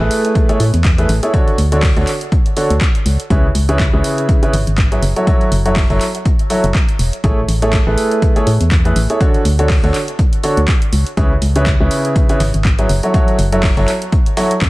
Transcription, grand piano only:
0.00 0.46 A3 medium
0.00 0.46 E4 medium
0.00 0.46 G#4 medium
0.00 0.46 A4 medium
0.00 0.46 B4 medium
0.49 0.61 A3 medium
0.49 0.61 E4 medium
0.49 0.61 G#4 medium
0.49 0.61 A4 medium
0.49 0.61 C#5 medium
0.98 1.10 A3 medium
0.98 1.10 E4 medium
0.98 1.10 G#4 medium
0.98 1.10 A4 medium
0.98 1.10 B4 medium
1.23 1.32 E4 medium
1.23 1.32 G#4 medium
1.23 1.32 A4 medium
1.23 1.32 C#5 medium
1.34 1.55 D3 medium
1.34 1.55 D4 medium
1.34 1.55 F#4 medium
1.34 1.55 A4 medium
1.34 1.55 C#5 loud
1.72 1.84 D3 medium
1.72 1.84 D4 medium
1.72 1.84 F#4 medium
1.72 1.84 A4 medium
1.72 1.84 C#5 medium
1.97 2.08 D3 medium
1.97 2.08 D4 medium
1.97 2.08 F#4 medium
1.97 2.08 A4 medium
1.97 2.08 C#5 medium
2.57 2.71 D3 medium
2.57 2.71 D4 medium
2.57 2.71 F#4 medium
2.57 2.71 A4 medium
2.57 2.71 C#5 medium
3.30 3.45 C#3 medium
3.30 3.45 E4 medium
3.30 3.45 G#4 medium
3.30 3.45 B4 medium
3.30 3.45 C#5 loud
3.69 3.81 C#3 medium
3.69 3.81 E4 medium
3.69 3.81 G#4 medium
3.69 3.81 B4 medium
3.69 3.81 C#5 medium
3.93 4.39 C#3 medium
3.93 4.39 E4 medium
3.93 4.39 G#4 medium
3.93 4.39 B4 medium
3.93 4.39 C#5 medium
4.43 4.54 C#3 medium
4.43 4.54 E4 medium
4.43 4.54 G#4 medium
4.43 4.54 B4 medium
4.43 4.54 C#5 medium
4.92 5.01 F#3 medium
4.92 5.01 E4 medium
4.92 5.01 G#4 medium
4.92 5.01 B4 medium
4.92 5.01 C#5 medium
5.16 5.26 F#3 medium
5.16 5.26 E4 medium
5.16 5.26 F#4 medium
5.16 5.26 A4 medium
5.16 5.26 C#5 medium
5.27 5.49 F#3 medium
5.27 5.49 E4 medium
5.27 5.49 F#4 medium
5.27 5.49 A4 medium
5.27 5.49 C#5 loud
5.66 5.77 F#3 medium
5.66 5.77 E4 medium
5.66 5.77 F#4 medium
5.66 5.77 A4 medium
5.66 5.77 C#5 medium
5.90 6.02 F#3 medium
5.90 6.02 E4 medium
5.90 6.02 F#4 medium
5.90 6.02 A4 medium
5.90 6.02 C#5 medium
6.50 6.65 F#3 medium
6.50 6.65 E4 medium
6.50 6.65 F#4 medium
6.50 6.65 A4 medium
6.50 6.65 C#5 medium
7.24 7.38 A3 medium
7.24 7.38 E4 medium
7.24 7.38 G#4 medium
7.24 7.38 A4 medium
7.24 7.38 C#5 medium
7.62 7.74 A3 medium
7.62 7.74 E4 medium
7.62 7.74 G#4 medium
7.62 7.74 A4 medium
7.62 7.74 C#5 medium
7.87 8.33 A3 medium
7.87 8.33 E4 medium
7.87 8.33 G#4 medium
7.87 8.33 A4 medium
7.87 8.33 B4 medium
8.36 8.48 A3 medium
8.36 8.48 E4 medium
8.36 8.48 G#4 medium
8.36 8.48 A4 medium
8.36 8.48 C#5 medium
8.85 8.97 A3 medium
8.85 8.97 E4 medium
8.85 8.97 G#4 medium
8.85 8.97 A4 medium
8.85 8.97 B4 medium
9.10 9.19 E4 medium
9.10 9.19 G#4 medium
9.10 9.19 A4 medium
9.10 9.19 C#5 medium
9.21 9.42 D3 medium
9.21 9.42 D4 medium
9.21 9.42 F#4 medium
9.21 9.42 A4 medium
9.21 9.42 C#5 loud
9.59 9.71 D3 medium
9.59 9.71 D4 medium
9.59 9.71 F#4 medium
9.59 9.71 A4 medium
9.59 9.71 C#5 medium
9.84 9.95 D3 medium
9.84 9.95 D4 medium
9.84 9.95 F#4 medium
9.84 9.95 A4 medium
9.84 9.95 C#5 medium
10.44 10.58 D3 medium
10.44 10.58 D4 medium
10.44 10.58 F#4 medium
10.44 10.58 A4 medium
10.44 10.58 C#5 loud
11.17 11.32 C#3 medium
11.17 11.32 E4 medium
11.17 11.32 G#4 medium
11.17 11.32 B4 medium
11.17 11.32 C#5 loud
11.56 11.67 C#3 medium
11.56 11.67 E4 medium
11.56 11.67 G#4 medium
11.56 11.67 B4 medium
11.56 11.67 C#5 loud
11.80 12.26 C#3 medium
11.80 12.26 E4 medium
11.80 12.26 G#4 medium
11.80 12.26 B4 medium
11.80 12.26 C#5 medium
12.30 12.41 C#3 medium
12.30 12.41 E4 medium
12.30 12.41 G#4 medium
12.30 12.41 B4 medium
12.30 12.41 C#5 medium
12.79 12.88 F#3 medium
12.79 12.88 E4 medium
12.79 12.88 G#4 medium
12.79 12.88 B4 medium
12.79 12.88 C#5 medium
13.03 13.12 F#3 medium
13.03 13.12 E4 medium
13.03 13.12 F#4 medium
13.03 13.12 A4 medium
13.03 13.12 C#5 medium
13.14 13.36 F#3 medium
13.14 13.36 E4 medium
13.14 13.36 F#4 medium
13.14 13.36 A4 medium
13.14 13.36 C#5 loud
13.52 13.64 F#3 medium
13.52 13.64 E4 medium
13.52 13.64 F#4 medium
13.52 13.64 A4 medium
13.52 13.64 C#5 medium
13.77 13.89 F#3 medium
13.77 13.89 E4 medium
13.77 13.89 F#4 medium
13.77 13.89 A4 medium
13.77 13.89 C#5 loud
14.37 14.52 F#3 medium
14.37 14.52 E4 medium
14.37 14.52 F#4 medium
14.37 14.52 A4 medium
14.37 14.52 C#5 loud

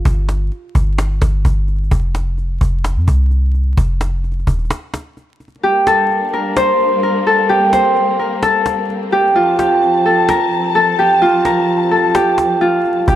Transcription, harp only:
0.00 0.25 F4 medium
5.63 7.49 G4 medium
5.87 6.39 A4 medium
6.33 7.03 A#4 medium
6.56 7.73 C5 medium
7.03 7.33 A#4 medium
7.27 8.25 A4 medium
7.49 9.12 G4 medium
7.73 9.71 C5 medium
8.19 8.48 A#4 medium
8.42 10.05 A4 loud
9.12 9.58 G4 medium
9.35 11.21 F4 medium
9.59 10.98 G4 medium
10.06 10.35 A4 medium
10.29 10.81 A#4 loud
10.75 11.51 A4 medium
10.99 12.14 G4 medium
11.22 12.61 F4 loud
11.45 11.97 A#4 medium
11.91 13.16 A4 medium
12.15 13.07 G4 medium
12.61 13.16 F4 medium
13.08 13.16 G4 medium

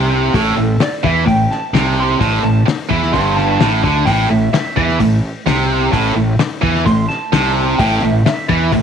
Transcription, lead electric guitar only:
0.35 0.79 A4 loud
0.82 1.04 D5 medium
1.04 1.26 E5 medium
1.27 1.50 G5 medium
1.51 1.96 A5 medium
2.00 2.43 C6 medium
2.43 2.66 A5 medium
3.13 3.36 C6 loud
3.36 4.05 A5 medium
4.05 4.29 G5 medium
4.31 4.52 E5 medium
4.53 4.76 E5 medium
4.77 5.00 E5 loud
6.86 7.08 C6 medium
7.09 7.77 A5 medium
7.78 8.01 G5 medium
8.02 8.24 E5 medium
8.26 8.48 E5 medium
8.49 8.72 E5 medium

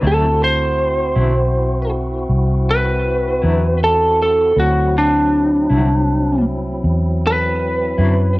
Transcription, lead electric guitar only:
0.07 0.41 A4 medium
0.44 1.90 C5 medium
2.71 3.79 B4 medium
3.84 4.19 A4 medium
4.22 4.58 A4 medium
4.60 4.95 F#4 medium
4.98 6.44 D4 medium
7.27 8.35 B4 medium

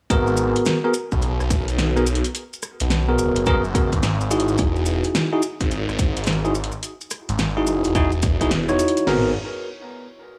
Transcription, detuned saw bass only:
0.10 0.53 G#1 loud
1.12 1.37 B1 loud
1.40 1.65 B1 loud
1.68 2.21 B1 loud
2.81 3.34 B1 loud
3.36 3.90 F#1 loud
3.93 4.18 G#1 medium
4.20 4.57 G#1 loud
4.59 5.02 E1 loud
5.60 5.86 G#1 loud
5.88 6.14 G#1 loud
6.17 6.70 G#1 loud
7.29 7.82 G#1 loud
7.84 8.21 E1 loud
8.23 8.78 E1 loud
9.07 9.33 G#1 loud

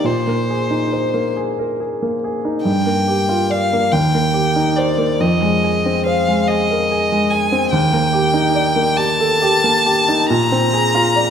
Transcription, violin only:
0.05 1.36 C5 soft
2.65 3.52 G5 medium
3.51 3.94 F5 soft
3.92 4.78 G5 medium
4.76 5.22 D5 soft
5.21 6.05 D#5 soft
6.06 6.50 F5 medium
6.48 7.32 D#5 medium
7.30 7.70 G#5 soft
7.71 8.98 G5 medium
8.96 10.29 A5 medium
10.29 11.30 A#5 medium

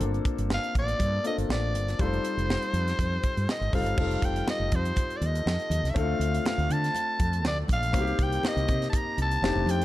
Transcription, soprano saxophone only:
0.54 0.76 F5 loud
0.79 1.23 D5 loud
1.27 1.37 D#5 medium
1.52 2.03 D5 medium
2.01 3.49 C5 medium
3.51 3.77 D#5 medium
3.75 4.27 F5 medium
4.25 4.49 G5 medium
4.50 4.77 D#5 medium
4.76 5.19 C5 medium
5.17 5.27 D5 medium
5.26 5.92 D#5 medium
5.90 5.99 E5 medium
5.98 6.47 F5 loud
6.48 6.73 F5 medium
6.72 7.46 A5 loud
7.47 7.58 D5 medium
7.73 8.24 F5 loud
8.23 8.49 G5 medium
8.48 8.89 D#5 loud
8.90 8.98 A5 medium
8.97 9.20 A#5 loud
9.22 9.72 A5 loud
9.71 9.85 G5 medium

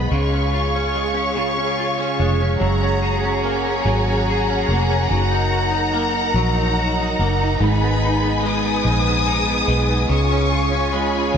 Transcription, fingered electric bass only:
0.11 2.15 C#2 loud
2.19 2.58 F1 medium
2.61 3.81 F#1 medium
3.85 4.64 G#1 medium
4.69 5.07 F1 loud
5.11 6.31 F#1 medium
6.34 7.13 A#1 medium
7.19 7.58 F#1 medium
7.60 8.81 G#1 loud
8.85 9.64 A#1 medium
9.68 10.07 B1 medium
10.10 11.31 C#2 loud
11.34 11.38 D#2 medium

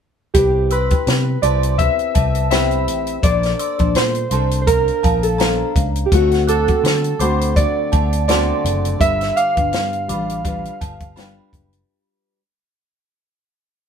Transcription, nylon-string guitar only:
0.34 0.90 C4 medium
0.34 0.90 E4 medium
0.34 0.90 G4 medium
0.34 0.89 B4 medium
0.90 1.41 E4 soft
0.90 1.42 G4 soft
0.90 1.42 B4 medium
1.41 1.77 C4 medium
1.41 1.78 E4 medium
1.41 1.78 G4 medium
1.41 1.79 B4 medium
1.78 2.50 C4 soft
1.78 2.50 E4 medium
1.78 2.50 G4 medium
1.78 2.50 B4 medium
2.50 3.22 C4 medium
2.50 3.22 E4 medium
2.50 3.23 G4 medium
2.50 3.23 B4 medium
3.22 3.78 A#3 medium
3.22 3.79 D4 medium
3.22 3.78 A4 medium
3.22 3.77 C5 medium
3.78 4.30 D4 soft
3.78 4.32 A4 soft
3.78 4.31 C5 medium
4.31 4.66 A#3 medium
4.31 4.67 D4 medium
4.31 4.68 A4 medium
4.31 4.68 C5 medium
4.68 5.38 A#3 medium
4.68 5.40 D4 medium
4.68 5.41 C5 medium
5.39 6.12 A#3 medium
5.39 6.12 D4 medium
5.39 6.15 C5 medium
6.12 6.68 D3 medium
6.12 6.68 A3 medium
6.12 6.68 C4 medium
6.12 6.67 F#4 medium
6.68 7.20 A3 soft
6.68 7.20 C4 soft
6.68 7.20 F#4 medium
7.19 7.55 D3 medium
7.19 7.55 A3 medium
7.19 7.56 C4 medium
7.19 7.57 F#4 medium
7.56 8.27 D3 medium
7.56 8.27 A3 medium
7.56 8.28 C4 medium
7.56 8.28 F#4 medium
8.28 11.78 D3 medium
8.28 8.99 A3 medium
8.28 8.99 C4 medium
8.28 9.00 F#4 medium
8.99 9.56 G3 medium
8.99 9.56 D4 medium
8.99 9.55 F4 medium
8.99 9.54 B4 medium
9.56 10.08 D4 soft
9.56 10.08 F4 soft
9.56 10.08 B4 medium
10.08 10.42 G3 medium
10.08 10.43 D4 medium
10.08 10.44 F4 medium
10.08 10.45 B4 medium
10.44 11.15 G3 medium
10.44 11.16 D4 medium
10.44 11.17 F4 medium
10.44 11.17 B4 medium
11.16 12.39 G3 medium
11.16 12.39 D4 medium
11.16 12.39 F4 loud
11.16 12.39 B4 loud

